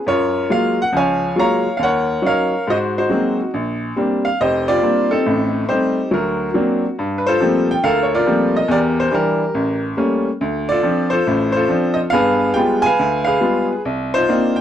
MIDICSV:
0, 0, Header, 1, 2, 480
1, 0, Start_track
1, 0, Tempo, 430725
1, 60, Time_signature, 4, 2, 24, 8
1, 16280, End_track
2, 0, Start_track
2, 0, Title_t, "Upright piano"
2, 0, Program_c, 0, 0
2, 72, Note_on_c, 0, 42, 55
2, 87, Note_on_c, 0, 73, 82
2, 93, Note_on_c, 0, 65, 60
2, 94, Note_on_c, 0, 70, 62
2, 486, Note_off_c, 0, 42, 0
2, 543, Note_off_c, 0, 65, 0
2, 554, Note_on_c, 0, 56, 43
2, 558, Note_on_c, 0, 54, 45
2, 560, Note_on_c, 0, 58, 44
2, 560, Note_on_c, 0, 65, 47
2, 571, Note_off_c, 0, 73, 0
2, 577, Note_on_c, 0, 77, 87
2, 864, Note_off_c, 0, 77, 0
2, 890, Note_off_c, 0, 56, 0
2, 892, Note_off_c, 0, 54, 0
2, 893, Note_off_c, 0, 58, 0
2, 893, Note_off_c, 0, 65, 0
2, 911, Note_on_c, 0, 78, 81
2, 999, Note_off_c, 0, 70, 0
2, 1030, Note_on_c, 0, 37, 55
2, 1031, Note_on_c, 0, 53, 53
2, 1052, Note_off_c, 0, 78, 0
2, 1077, Note_on_c, 0, 80, 82
2, 1078, Note_on_c, 0, 77, 56
2, 1079, Note_on_c, 0, 73, 58
2, 1448, Note_off_c, 0, 37, 0
2, 1449, Note_off_c, 0, 53, 0
2, 1502, Note_off_c, 0, 80, 0
2, 1515, Note_on_c, 0, 54, 42
2, 1519, Note_on_c, 0, 65, 47
2, 1520, Note_on_c, 0, 56, 39
2, 1524, Note_on_c, 0, 58, 39
2, 1538, Note_off_c, 0, 73, 0
2, 1541, Note_off_c, 0, 77, 0
2, 1554, Note_on_c, 0, 73, 64
2, 1554, Note_on_c, 0, 82, 88
2, 1558, Note_on_c, 0, 77, 63
2, 1853, Note_off_c, 0, 54, 0
2, 1855, Note_off_c, 0, 65, 0
2, 1856, Note_off_c, 0, 56, 0
2, 1857, Note_off_c, 0, 58, 0
2, 1934, Note_off_c, 0, 82, 0
2, 1957, Note_off_c, 0, 77, 0
2, 1974, Note_on_c, 0, 77, 66
2, 1982, Note_off_c, 0, 73, 0
2, 1996, Note_on_c, 0, 39, 57
2, 2008, Note_off_c, 0, 77, 0
2, 2038, Note_on_c, 0, 78, 85
2, 2049, Note_on_c, 0, 70, 58
2, 2049, Note_on_c, 0, 73, 64
2, 2413, Note_off_c, 0, 39, 0
2, 2474, Note_on_c, 0, 54, 48
2, 2479, Note_on_c, 0, 61, 42
2, 2482, Note_on_c, 0, 63, 54
2, 2509, Note_off_c, 0, 73, 0
2, 2511, Note_off_c, 0, 78, 0
2, 2515, Note_off_c, 0, 70, 0
2, 2524, Note_on_c, 0, 77, 80
2, 2525, Note_on_c, 0, 73, 59
2, 2531, Note_on_c, 0, 70, 63
2, 2815, Note_off_c, 0, 54, 0
2, 2817, Note_off_c, 0, 61, 0
2, 2819, Note_off_c, 0, 63, 0
2, 2950, Note_off_c, 0, 73, 0
2, 2953, Note_off_c, 0, 70, 0
2, 2977, Note_on_c, 0, 44, 58
2, 2995, Note_off_c, 0, 77, 0
2, 3009, Note_on_c, 0, 72, 54
2, 3010, Note_on_c, 0, 66, 54
2, 3011, Note_on_c, 0, 75, 88
2, 3078, Note_off_c, 0, 75, 0
2, 3305, Note_off_c, 0, 72, 0
2, 3309, Note_off_c, 0, 66, 0
2, 3322, Note_on_c, 0, 72, 68
2, 3323, Note_on_c, 0, 63, 55
2, 3326, Note_on_c, 0, 66, 53
2, 3387, Note_off_c, 0, 44, 0
2, 3448, Note_on_c, 0, 54, 45
2, 3453, Note_on_c, 0, 56, 41
2, 3457, Note_on_c, 0, 58, 41
2, 3457, Note_on_c, 0, 60, 53
2, 3751, Note_off_c, 0, 72, 0
2, 3784, Note_off_c, 0, 54, 0
2, 3786, Note_off_c, 0, 56, 0
2, 3788, Note_off_c, 0, 58, 0
2, 3788, Note_off_c, 0, 60, 0
2, 3898, Note_off_c, 0, 63, 0
2, 3900, Note_off_c, 0, 66, 0
2, 3943, Note_on_c, 0, 34, 59
2, 4351, Note_off_c, 0, 34, 0
2, 4418, Note_on_c, 0, 55, 49
2, 4421, Note_on_c, 0, 60, 41
2, 4424, Note_on_c, 0, 58, 41
2, 4427, Note_on_c, 0, 62, 54
2, 4734, Note_on_c, 0, 77, 79
2, 4750, Note_off_c, 0, 55, 0
2, 4752, Note_off_c, 0, 60, 0
2, 4753, Note_off_c, 0, 58, 0
2, 4755, Note_off_c, 0, 62, 0
2, 4877, Note_off_c, 0, 77, 0
2, 4910, Note_on_c, 0, 29, 55
2, 4912, Note_on_c, 0, 75, 90
2, 4920, Note_on_c, 0, 72, 61
2, 4926, Note_on_c, 0, 67, 65
2, 5211, Note_off_c, 0, 67, 0
2, 5217, Note_on_c, 0, 74, 101
2, 5228, Note_on_c, 0, 67, 58
2, 5229, Note_on_c, 0, 65, 67
2, 5232, Note_off_c, 0, 75, 0
2, 5317, Note_off_c, 0, 29, 0
2, 5380, Note_on_c, 0, 55, 43
2, 5381, Note_on_c, 0, 58, 44
2, 5387, Note_on_c, 0, 60, 44
2, 5389, Note_on_c, 0, 62, 50
2, 5660, Note_off_c, 0, 74, 0
2, 5687, Note_off_c, 0, 60, 0
2, 5694, Note_on_c, 0, 69, 78
2, 5699, Note_on_c, 0, 63, 54
2, 5704, Note_on_c, 0, 60, 56
2, 5712, Note_off_c, 0, 55, 0
2, 5713, Note_off_c, 0, 58, 0
2, 5717, Note_off_c, 0, 62, 0
2, 5812, Note_off_c, 0, 67, 0
2, 5813, Note_off_c, 0, 65, 0
2, 5820, Note_off_c, 0, 72, 0
2, 5861, Note_on_c, 0, 33, 57
2, 5867, Note_on_c, 0, 45, 61
2, 6272, Note_off_c, 0, 33, 0
2, 6276, Note_off_c, 0, 45, 0
2, 6285, Note_off_c, 0, 69, 0
2, 6325, Note_off_c, 0, 63, 0
2, 6332, Note_off_c, 0, 60, 0
2, 6337, Note_on_c, 0, 72, 76
2, 6338, Note_on_c, 0, 55, 49
2, 6338, Note_on_c, 0, 67, 55
2, 6341, Note_on_c, 0, 63, 60
2, 6345, Note_on_c, 0, 57, 48
2, 6349, Note_on_c, 0, 60, 57
2, 6672, Note_off_c, 0, 55, 0
2, 6675, Note_off_c, 0, 57, 0
2, 6678, Note_off_c, 0, 60, 0
2, 6780, Note_off_c, 0, 67, 0
2, 6780, Note_off_c, 0, 72, 0
2, 6782, Note_off_c, 0, 63, 0
2, 6809, Note_on_c, 0, 38, 58
2, 6809, Note_on_c, 0, 54, 55
2, 6839, Note_on_c, 0, 70, 68
2, 6843, Note_on_c, 0, 66, 45
2, 7226, Note_off_c, 0, 38, 0
2, 7226, Note_off_c, 0, 54, 0
2, 7290, Note_on_c, 0, 54, 47
2, 7293, Note_on_c, 0, 58, 42
2, 7293, Note_on_c, 0, 60, 46
2, 7294, Note_on_c, 0, 62, 52
2, 7582, Note_off_c, 0, 70, 0
2, 7628, Note_off_c, 0, 54, 0
2, 7630, Note_off_c, 0, 58, 0
2, 7630, Note_off_c, 0, 60, 0
2, 7630, Note_off_c, 0, 62, 0
2, 7741, Note_off_c, 0, 66, 0
2, 7786, Note_on_c, 0, 43, 61
2, 8003, Note_on_c, 0, 71, 67
2, 8096, Note_on_c, 0, 72, 90
2, 8100, Note_off_c, 0, 71, 0
2, 8115, Note_on_c, 0, 65, 62
2, 8117, Note_on_c, 0, 69, 57
2, 8195, Note_off_c, 0, 43, 0
2, 8250, Note_on_c, 0, 53, 48
2, 8254, Note_on_c, 0, 57, 48
2, 8257, Note_on_c, 0, 55, 45
2, 8257, Note_on_c, 0, 58, 46
2, 8260, Note_on_c, 0, 60, 53
2, 8540, Note_off_c, 0, 72, 0
2, 8587, Note_off_c, 0, 53, 0
2, 8589, Note_off_c, 0, 57, 0
2, 8591, Note_off_c, 0, 55, 0
2, 8591, Note_off_c, 0, 58, 0
2, 8591, Note_on_c, 0, 79, 92
2, 8592, Note_off_c, 0, 60, 0
2, 8725, Note_off_c, 0, 69, 0
2, 8727, Note_off_c, 0, 79, 0
2, 8730, Note_on_c, 0, 38, 61
2, 8733, Note_on_c, 0, 77, 93
2, 8741, Note_on_c, 0, 69, 69
2, 8745, Note_on_c, 0, 70, 67
2, 8947, Note_on_c, 0, 73, 62
2, 8954, Note_off_c, 0, 77, 0
2, 9017, Note_off_c, 0, 65, 0
2, 9051, Note_off_c, 0, 73, 0
2, 9065, Note_off_c, 0, 70, 0
2, 9079, Note_on_c, 0, 74, 86
2, 9082, Note_on_c, 0, 65, 61
2, 9082, Note_on_c, 0, 70, 67
2, 9145, Note_off_c, 0, 38, 0
2, 9209, Note_on_c, 0, 53, 47
2, 9209, Note_on_c, 0, 55, 45
2, 9214, Note_on_c, 0, 58, 46
2, 9216, Note_on_c, 0, 57, 49
2, 9217, Note_on_c, 0, 60, 59
2, 9544, Note_on_c, 0, 75, 84
2, 9546, Note_off_c, 0, 53, 0
2, 9546, Note_off_c, 0, 55, 0
2, 9548, Note_off_c, 0, 58, 0
2, 9549, Note_off_c, 0, 57, 0
2, 9550, Note_off_c, 0, 60, 0
2, 9557, Note_off_c, 0, 74, 0
2, 9647, Note_off_c, 0, 69, 0
2, 9658, Note_off_c, 0, 65, 0
2, 9658, Note_off_c, 0, 70, 0
2, 9677, Note_on_c, 0, 40, 70
2, 9697, Note_off_c, 0, 75, 0
2, 9706, Note_on_c, 0, 67, 62
2, 9708, Note_on_c, 0, 70, 67
2, 9711, Note_on_c, 0, 74, 94
2, 9780, Note_off_c, 0, 74, 0
2, 10027, Note_on_c, 0, 72, 79
2, 10097, Note_off_c, 0, 40, 0
2, 10156, Note_on_c, 0, 52, 54
2, 10159, Note_on_c, 0, 55, 52
2, 10165, Note_on_c, 0, 62, 64
2, 10171, Note_off_c, 0, 67, 0
2, 10175, Note_off_c, 0, 70, 0
2, 10178, Note_off_c, 0, 72, 0
2, 10188, Note_on_c, 0, 67, 50
2, 10192, Note_on_c, 0, 70, 74
2, 10498, Note_off_c, 0, 52, 0
2, 10499, Note_off_c, 0, 55, 0
2, 10502, Note_off_c, 0, 62, 0
2, 10638, Note_on_c, 0, 33, 66
2, 10932, Note_off_c, 0, 67, 0
2, 10934, Note_off_c, 0, 70, 0
2, 11056, Note_off_c, 0, 33, 0
2, 11110, Note_on_c, 0, 57, 49
2, 11111, Note_on_c, 0, 55, 49
2, 11116, Note_on_c, 0, 58, 49
2, 11121, Note_on_c, 0, 61, 60
2, 11453, Note_off_c, 0, 57, 0
2, 11454, Note_off_c, 0, 55, 0
2, 11456, Note_off_c, 0, 58, 0
2, 11459, Note_off_c, 0, 61, 0
2, 11601, Note_on_c, 0, 38, 65
2, 11910, Note_on_c, 0, 74, 96
2, 11941, Note_on_c, 0, 69, 53
2, 11942, Note_on_c, 0, 65, 56
2, 12016, Note_off_c, 0, 38, 0
2, 12069, Note_on_c, 0, 53, 53
2, 12077, Note_on_c, 0, 60, 51
2, 12084, Note_on_c, 0, 62, 58
2, 12370, Note_on_c, 0, 72, 84
2, 12384, Note_off_c, 0, 69, 0
2, 12389, Note_off_c, 0, 65, 0
2, 12400, Note_on_c, 0, 69, 57
2, 12406, Note_on_c, 0, 65, 58
2, 12409, Note_off_c, 0, 74, 0
2, 12411, Note_off_c, 0, 53, 0
2, 12415, Note_off_c, 0, 60, 0
2, 12418, Note_off_c, 0, 62, 0
2, 12557, Note_on_c, 0, 33, 64
2, 12559, Note_on_c, 0, 45, 64
2, 12825, Note_off_c, 0, 72, 0
2, 12842, Note_on_c, 0, 72, 80
2, 12868, Note_off_c, 0, 65, 0
2, 12876, Note_off_c, 0, 69, 0
2, 12885, Note_on_c, 0, 65, 61
2, 12893, Note_on_c, 0, 69, 59
2, 12972, Note_off_c, 0, 33, 0
2, 12974, Note_off_c, 0, 45, 0
2, 13026, Note_on_c, 0, 53, 53
2, 13032, Note_on_c, 0, 60, 44
2, 13036, Note_on_c, 0, 62, 51
2, 13303, Note_on_c, 0, 75, 83
2, 13353, Note_off_c, 0, 72, 0
2, 13359, Note_off_c, 0, 75, 0
2, 13368, Note_off_c, 0, 53, 0
2, 13371, Note_off_c, 0, 60, 0
2, 13373, Note_off_c, 0, 62, 0
2, 13472, Note_off_c, 0, 65, 0
2, 13476, Note_off_c, 0, 69, 0
2, 13485, Note_on_c, 0, 77, 96
2, 13512, Note_on_c, 0, 59, 65
2, 13515, Note_on_c, 0, 43, 64
2, 13526, Note_on_c, 0, 68, 71
2, 13529, Note_on_c, 0, 71, 69
2, 13928, Note_off_c, 0, 59, 0
2, 13930, Note_off_c, 0, 43, 0
2, 13972, Note_on_c, 0, 79, 98
2, 13992, Note_off_c, 0, 77, 0
2, 13996, Note_on_c, 0, 56, 48
2, 13998, Note_on_c, 0, 55, 51
2, 14001, Note_on_c, 0, 65, 55
2, 14004, Note_on_c, 0, 59, 50
2, 14287, Note_on_c, 0, 80, 117
2, 14314, Note_off_c, 0, 79, 0
2, 14320, Note_off_c, 0, 71, 0
2, 14331, Note_off_c, 0, 56, 0
2, 14332, Note_off_c, 0, 55, 0
2, 14333, Note_on_c, 0, 77, 70
2, 14334, Note_off_c, 0, 65, 0
2, 14335, Note_off_c, 0, 59, 0
2, 14337, Note_on_c, 0, 71, 68
2, 14431, Note_off_c, 0, 68, 0
2, 14480, Note_on_c, 0, 38, 61
2, 14744, Note_off_c, 0, 77, 0
2, 14744, Note_off_c, 0, 80, 0
2, 14761, Note_on_c, 0, 77, 85
2, 14768, Note_off_c, 0, 71, 0
2, 14785, Note_on_c, 0, 71, 63
2, 14795, Note_on_c, 0, 68, 67
2, 14891, Note_off_c, 0, 38, 0
2, 14940, Note_on_c, 0, 55, 49
2, 14947, Note_on_c, 0, 56, 44
2, 14947, Note_on_c, 0, 59, 44
2, 14948, Note_on_c, 0, 65, 53
2, 15220, Note_off_c, 0, 77, 0
2, 15281, Note_off_c, 0, 55, 0
2, 15285, Note_off_c, 0, 56, 0
2, 15285, Note_off_c, 0, 59, 0
2, 15286, Note_off_c, 0, 65, 0
2, 15378, Note_off_c, 0, 71, 0
2, 15383, Note_off_c, 0, 68, 0
2, 15438, Note_on_c, 0, 36, 64
2, 15757, Note_on_c, 0, 72, 97
2, 15769, Note_on_c, 0, 63, 59
2, 15780, Note_on_c, 0, 65, 64
2, 15848, Note_off_c, 0, 36, 0
2, 15914, Note_off_c, 0, 63, 0
2, 15914, Note_off_c, 0, 65, 0
2, 15922, Note_on_c, 0, 58, 55
2, 15926, Note_on_c, 0, 62, 45
2, 15929, Note_on_c, 0, 60, 50
2, 15930, Note_on_c, 0, 63, 51
2, 15931, Note_on_c, 0, 65, 60
2, 16198, Note_off_c, 0, 72, 0
2, 16226, Note_on_c, 0, 79, 88
2, 16251, Note_off_c, 0, 58, 0
2, 16253, Note_off_c, 0, 62, 0
2, 16254, Note_off_c, 0, 60, 0
2, 16255, Note_off_c, 0, 63, 0
2, 16255, Note_off_c, 0, 65, 0
2, 16280, Note_off_c, 0, 79, 0
2, 16280, End_track
0, 0, End_of_file